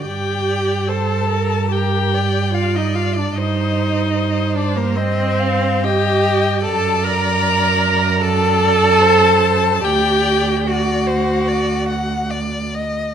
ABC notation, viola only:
X:1
M:4/4
L:1/16
Q:1/4=73
K:Gm
V:1 name="Viola"
G4 A4 G4 F E F D | E6 D B, C4 G4 | A2 B6 A8 | G4 ^F8 z4 |]